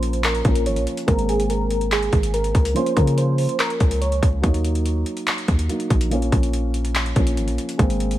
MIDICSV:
0, 0, Header, 1, 5, 480
1, 0, Start_track
1, 0, Key_signature, -5, "minor"
1, 0, Tempo, 419580
1, 1233, Time_signature, 4, 2, 24, 8
1, 9364, End_track
2, 0, Start_track
2, 0, Title_t, "Synth keys"
2, 0, Program_c, 0, 88
2, 0, Note_on_c, 0, 72, 92
2, 243, Note_off_c, 0, 72, 0
2, 274, Note_on_c, 0, 70, 89
2, 725, Note_off_c, 0, 70, 0
2, 757, Note_on_c, 0, 73, 74
2, 969, Note_off_c, 0, 73, 0
2, 1232, Note_on_c, 0, 70, 107
2, 1447, Note_off_c, 0, 70, 0
2, 1476, Note_on_c, 0, 68, 86
2, 1689, Note_off_c, 0, 68, 0
2, 1712, Note_on_c, 0, 70, 82
2, 2164, Note_off_c, 0, 70, 0
2, 2196, Note_on_c, 0, 68, 83
2, 2646, Note_off_c, 0, 68, 0
2, 2671, Note_on_c, 0, 70, 84
2, 3124, Note_off_c, 0, 70, 0
2, 3155, Note_on_c, 0, 72, 106
2, 3368, Note_off_c, 0, 72, 0
2, 3396, Note_on_c, 0, 70, 79
2, 3608, Note_off_c, 0, 70, 0
2, 3635, Note_on_c, 0, 72, 91
2, 4085, Note_off_c, 0, 72, 0
2, 4111, Note_on_c, 0, 70, 83
2, 4564, Note_off_c, 0, 70, 0
2, 4590, Note_on_c, 0, 73, 83
2, 4805, Note_off_c, 0, 73, 0
2, 9364, End_track
3, 0, Start_track
3, 0, Title_t, "Grand piano"
3, 0, Program_c, 1, 0
3, 0, Control_c, 1, 64, 127
3, 0, Note_on_c, 1, 53, 70
3, 0, Note_on_c, 1, 58, 65
3, 0, Note_on_c, 1, 61, 75
3, 482, Note_off_c, 1, 53, 0
3, 491, Note_off_c, 1, 58, 0
3, 499, Note_off_c, 1, 61, 0
3, 507, Note_on_c, 1, 53, 51
3, 516, Note_on_c, 1, 58, 48
3, 524, Note_on_c, 1, 61, 56
3, 1217, Note_off_c, 1, 58, 0
3, 1217, Note_on_c, 1, 56, 72
3, 1230, Note_off_c, 1, 53, 0
3, 1234, Note_on_c, 1, 58, 61
3, 1239, Note_off_c, 1, 61, 0
3, 1250, Control_c, 1, 64, 0
3, 1252, Note_on_c, 1, 60, 82
3, 1416, Control_c, 1, 64, 127
3, 3107, Note_off_c, 1, 56, 0
3, 3116, Note_off_c, 1, 58, 0
3, 3124, Note_off_c, 1, 60, 0
3, 3137, Note_on_c, 1, 53, 70
3, 3154, Note_on_c, 1, 58, 67
3, 3170, Control_c, 1, 64, 0
3, 3171, Note_on_c, 1, 61, 74
3, 3389, Control_c, 1, 64, 127
3, 5027, Note_off_c, 1, 53, 0
3, 5035, Note_off_c, 1, 58, 0
3, 5044, Note_off_c, 1, 61, 0
3, 5054, Note_on_c, 1, 54, 66
3, 5071, Note_on_c, 1, 58, 64
3, 5089, Note_on_c, 1, 63, 72
3, 5091, Control_c, 1, 64, 0
3, 5279, Control_c, 1, 64, 127
3, 6475, Note_off_c, 1, 54, 0
3, 6484, Note_off_c, 1, 58, 0
3, 6493, Note_off_c, 1, 63, 0
3, 6506, Note_on_c, 1, 54, 50
3, 6514, Note_on_c, 1, 58, 44
3, 6523, Note_on_c, 1, 63, 58
3, 6978, Note_off_c, 1, 58, 0
3, 6978, Note_on_c, 1, 53, 72
3, 6990, Note_off_c, 1, 54, 0
3, 6995, Note_on_c, 1, 58, 67
3, 6998, Note_off_c, 1, 63, 0
3, 7007, Control_c, 1, 64, 0
3, 7012, Note_on_c, 1, 61, 77
3, 7243, Control_c, 1, 64, 127
3, 8162, Note_off_c, 1, 53, 0
3, 8170, Note_off_c, 1, 58, 0
3, 8179, Note_off_c, 1, 61, 0
3, 8186, Note_on_c, 1, 53, 52
3, 8195, Note_on_c, 1, 58, 48
3, 8204, Note_on_c, 1, 61, 58
3, 8897, Note_off_c, 1, 58, 0
3, 8897, Note_on_c, 1, 56, 70
3, 8910, Note_off_c, 1, 53, 0
3, 8914, Note_on_c, 1, 58, 61
3, 8919, Note_off_c, 1, 61, 0
3, 8929, Control_c, 1, 64, 0
3, 8931, Note_on_c, 1, 60, 82
3, 9112, Control_c, 1, 64, 127
3, 9364, Note_off_c, 1, 56, 0
3, 9364, Note_off_c, 1, 58, 0
3, 9364, Note_off_c, 1, 60, 0
3, 9364, End_track
4, 0, Start_track
4, 0, Title_t, "808-style bass"
4, 0, Program_c, 2, 38
4, 0, Note_on_c, 2, 34, 106
4, 475, Note_off_c, 2, 34, 0
4, 513, Note_on_c, 2, 34, 106
4, 754, Note_on_c, 2, 32, 94
4, 771, Note_off_c, 2, 34, 0
4, 874, Note_on_c, 2, 34, 96
4, 892, Note_off_c, 2, 32, 0
4, 988, Note_off_c, 2, 34, 0
4, 1234, Note_on_c, 2, 32, 119
4, 2388, Note_off_c, 2, 32, 0
4, 2433, Note_on_c, 2, 32, 108
4, 2894, Note_off_c, 2, 32, 0
4, 2914, Note_on_c, 2, 37, 105
4, 3144, Note_off_c, 2, 37, 0
4, 3393, Note_on_c, 2, 49, 107
4, 3970, Note_off_c, 2, 49, 0
4, 4352, Note_on_c, 2, 37, 103
4, 4814, Note_off_c, 2, 37, 0
4, 4834, Note_on_c, 2, 37, 107
4, 5064, Note_off_c, 2, 37, 0
4, 5073, Note_on_c, 2, 39, 115
4, 5765, Note_off_c, 2, 39, 0
4, 6272, Note_on_c, 2, 39, 105
4, 6503, Note_off_c, 2, 39, 0
4, 6754, Note_on_c, 2, 34, 102
4, 7215, Note_off_c, 2, 34, 0
4, 7234, Note_on_c, 2, 34, 105
4, 8155, Note_off_c, 2, 34, 0
4, 8193, Note_on_c, 2, 34, 106
4, 8433, Note_on_c, 2, 32, 95
4, 8451, Note_off_c, 2, 34, 0
4, 8553, Note_on_c, 2, 34, 95
4, 8571, Note_off_c, 2, 32, 0
4, 8668, Note_off_c, 2, 34, 0
4, 8913, Note_on_c, 2, 32, 113
4, 9364, Note_off_c, 2, 32, 0
4, 9364, End_track
5, 0, Start_track
5, 0, Title_t, "Drums"
5, 30, Note_on_c, 9, 42, 65
5, 145, Note_off_c, 9, 42, 0
5, 151, Note_on_c, 9, 42, 56
5, 265, Note_off_c, 9, 42, 0
5, 274, Note_on_c, 9, 39, 106
5, 276, Note_on_c, 9, 42, 76
5, 388, Note_off_c, 9, 39, 0
5, 390, Note_off_c, 9, 42, 0
5, 396, Note_on_c, 9, 42, 45
5, 510, Note_off_c, 9, 42, 0
5, 511, Note_on_c, 9, 42, 60
5, 513, Note_on_c, 9, 36, 95
5, 625, Note_off_c, 9, 42, 0
5, 627, Note_off_c, 9, 36, 0
5, 634, Note_on_c, 9, 42, 82
5, 748, Note_off_c, 9, 42, 0
5, 755, Note_on_c, 9, 42, 76
5, 870, Note_off_c, 9, 42, 0
5, 873, Note_on_c, 9, 42, 53
5, 988, Note_off_c, 9, 42, 0
5, 994, Note_on_c, 9, 42, 71
5, 1108, Note_off_c, 9, 42, 0
5, 1114, Note_on_c, 9, 42, 70
5, 1229, Note_off_c, 9, 42, 0
5, 1234, Note_on_c, 9, 36, 120
5, 1234, Note_on_c, 9, 42, 80
5, 1348, Note_off_c, 9, 36, 0
5, 1349, Note_off_c, 9, 42, 0
5, 1357, Note_on_c, 9, 42, 57
5, 1471, Note_off_c, 9, 42, 0
5, 1475, Note_on_c, 9, 42, 76
5, 1589, Note_off_c, 9, 42, 0
5, 1598, Note_on_c, 9, 42, 61
5, 1712, Note_off_c, 9, 42, 0
5, 1715, Note_on_c, 9, 42, 76
5, 1829, Note_off_c, 9, 42, 0
5, 1950, Note_on_c, 9, 42, 65
5, 2065, Note_off_c, 9, 42, 0
5, 2071, Note_on_c, 9, 42, 55
5, 2186, Note_off_c, 9, 42, 0
5, 2194, Note_on_c, 9, 39, 104
5, 2196, Note_on_c, 9, 42, 75
5, 2309, Note_off_c, 9, 39, 0
5, 2311, Note_off_c, 9, 42, 0
5, 2317, Note_on_c, 9, 42, 47
5, 2431, Note_off_c, 9, 42, 0
5, 2431, Note_on_c, 9, 42, 60
5, 2433, Note_on_c, 9, 36, 95
5, 2545, Note_off_c, 9, 42, 0
5, 2547, Note_off_c, 9, 36, 0
5, 2554, Note_on_c, 9, 42, 84
5, 2668, Note_off_c, 9, 42, 0
5, 2675, Note_on_c, 9, 42, 78
5, 2789, Note_off_c, 9, 42, 0
5, 2793, Note_on_c, 9, 42, 52
5, 2907, Note_off_c, 9, 42, 0
5, 2914, Note_on_c, 9, 36, 95
5, 2914, Note_on_c, 9, 42, 70
5, 3028, Note_off_c, 9, 36, 0
5, 3028, Note_off_c, 9, 42, 0
5, 3034, Note_on_c, 9, 42, 71
5, 3148, Note_off_c, 9, 42, 0
5, 3154, Note_on_c, 9, 42, 79
5, 3269, Note_off_c, 9, 42, 0
5, 3276, Note_on_c, 9, 42, 55
5, 3391, Note_off_c, 9, 42, 0
5, 3393, Note_on_c, 9, 36, 86
5, 3393, Note_on_c, 9, 42, 74
5, 3507, Note_off_c, 9, 36, 0
5, 3508, Note_off_c, 9, 42, 0
5, 3517, Note_on_c, 9, 42, 64
5, 3631, Note_off_c, 9, 42, 0
5, 3634, Note_on_c, 9, 42, 76
5, 3748, Note_off_c, 9, 42, 0
5, 3870, Note_on_c, 9, 46, 73
5, 3985, Note_off_c, 9, 46, 0
5, 3992, Note_on_c, 9, 42, 55
5, 4106, Note_off_c, 9, 42, 0
5, 4113, Note_on_c, 9, 39, 103
5, 4115, Note_on_c, 9, 42, 73
5, 4228, Note_off_c, 9, 39, 0
5, 4230, Note_off_c, 9, 42, 0
5, 4235, Note_on_c, 9, 42, 46
5, 4350, Note_off_c, 9, 42, 0
5, 4350, Note_on_c, 9, 42, 61
5, 4352, Note_on_c, 9, 36, 94
5, 4464, Note_off_c, 9, 42, 0
5, 4467, Note_off_c, 9, 36, 0
5, 4473, Note_on_c, 9, 42, 83
5, 4587, Note_off_c, 9, 42, 0
5, 4594, Note_on_c, 9, 42, 75
5, 4708, Note_off_c, 9, 42, 0
5, 4713, Note_on_c, 9, 42, 52
5, 4827, Note_off_c, 9, 42, 0
5, 4834, Note_on_c, 9, 36, 94
5, 4837, Note_on_c, 9, 42, 86
5, 4948, Note_off_c, 9, 36, 0
5, 4951, Note_off_c, 9, 42, 0
5, 5073, Note_on_c, 9, 36, 121
5, 5074, Note_on_c, 9, 42, 79
5, 5188, Note_off_c, 9, 36, 0
5, 5188, Note_off_c, 9, 42, 0
5, 5197, Note_on_c, 9, 42, 56
5, 5311, Note_off_c, 9, 42, 0
5, 5314, Note_on_c, 9, 42, 76
5, 5429, Note_off_c, 9, 42, 0
5, 5437, Note_on_c, 9, 42, 62
5, 5551, Note_off_c, 9, 42, 0
5, 5555, Note_on_c, 9, 42, 75
5, 5669, Note_off_c, 9, 42, 0
5, 5790, Note_on_c, 9, 42, 68
5, 5904, Note_off_c, 9, 42, 0
5, 5911, Note_on_c, 9, 42, 54
5, 6026, Note_off_c, 9, 42, 0
5, 6033, Note_on_c, 9, 39, 110
5, 6035, Note_on_c, 9, 42, 73
5, 6147, Note_off_c, 9, 39, 0
5, 6150, Note_off_c, 9, 42, 0
5, 6155, Note_on_c, 9, 42, 46
5, 6270, Note_off_c, 9, 42, 0
5, 6270, Note_on_c, 9, 42, 57
5, 6273, Note_on_c, 9, 36, 90
5, 6385, Note_off_c, 9, 42, 0
5, 6387, Note_off_c, 9, 36, 0
5, 6394, Note_on_c, 9, 42, 81
5, 6508, Note_off_c, 9, 42, 0
5, 6515, Note_on_c, 9, 42, 78
5, 6629, Note_off_c, 9, 42, 0
5, 6633, Note_on_c, 9, 42, 51
5, 6747, Note_off_c, 9, 42, 0
5, 6754, Note_on_c, 9, 36, 93
5, 6754, Note_on_c, 9, 42, 73
5, 6868, Note_off_c, 9, 36, 0
5, 6868, Note_off_c, 9, 42, 0
5, 6874, Note_on_c, 9, 42, 73
5, 6988, Note_off_c, 9, 42, 0
5, 6994, Note_on_c, 9, 42, 80
5, 7109, Note_off_c, 9, 42, 0
5, 7117, Note_on_c, 9, 42, 55
5, 7231, Note_off_c, 9, 42, 0
5, 7234, Note_on_c, 9, 36, 89
5, 7234, Note_on_c, 9, 42, 77
5, 7348, Note_off_c, 9, 36, 0
5, 7349, Note_off_c, 9, 42, 0
5, 7357, Note_on_c, 9, 42, 64
5, 7472, Note_off_c, 9, 42, 0
5, 7475, Note_on_c, 9, 42, 76
5, 7590, Note_off_c, 9, 42, 0
5, 7711, Note_on_c, 9, 42, 66
5, 7826, Note_off_c, 9, 42, 0
5, 7833, Note_on_c, 9, 42, 58
5, 7947, Note_off_c, 9, 42, 0
5, 7954, Note_on_c, 9, 39, 107
5, 7956, Note_on_c, 9, 42, 75
5, 8068, Note_off_c, 9, 39, 0
5, 8070, Note_off_c, 9, 42, 0
5, 8076, Note_on_c, 9, 42, 48
5, 8190, Note_off_c, 9, 42, 0
5, 8190, Note_on_c, 9, 42, 61
5, 8193, Note_on_c, 9, 36, 93
5, 8305, Note_off_c, 9, 42, 0
5, 8307, Note_off_c, 9, 36, 0
5, 8314, Note_on_c, 9, 42, 84
5, 8428, Note_off_c, 9, 42, 0
5, 8435, Note_on_c, 9, 42, 75
5, 8549, Note_off_c, 9, 42, 0
5, 8553, Note_on_c, 9, 42, 53
5, 8667, Note_off_c, 9, 42, 0
5, 8675, Note_on_c, 9, 42, 73
5, 8789, Note_off_c, 9, 42, 0
5, 8794, Note_on_c, 9, 42, 70
5, 8909, Note_off_c, 9, 42, 0
5, 8914, Note_on_c, 9, 36, 117
5, 8914, Note_on_c, 9, 42, 80
5, 9028, Note_off_c, 9, 36, 0
5, 9029, Note_off_c, 9, 42, 0
5, 9037, Note_on_c, 9, 42, 58
5, 9152, Note_off_c, 9, 42, 0
5, 9154, Note_on_c, 9, 42, 77
5, 9269, Note_off_c, 9, 42, 0
5, 9277, Note_on_c, 9, 42, 63
5, 9364, Note_off_c, 9, 42, 0
5, 9364, End_track
0, 0, End_of_file